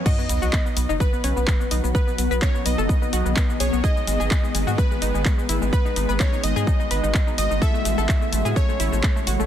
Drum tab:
CC |x---------------|----------------|----------------|----------------|
HH |--o---o---o---o-|--o---o---o---o-|--o---o---o---o-|--o---o---o---o-|
SH |xxxxxxxxxxxxxxxx|xxxxxxxxxxxxxxxx|xxxxxxxxxxxxxxxx|xxxxxxxxxxxxxxxx|
CP |----x-------x---|----x-------x---|----x-------x---|----x-------x---|
BD |o---o---o---o---|o---o---o---o---|o---o---o---o---|o---o---o---o---|

CC |----------------|
HH |--o---o---o---o-|
SH |xxxxxxxxxxxxxxxx|
CP |----x-------x---|
BD |o---o---o---o---|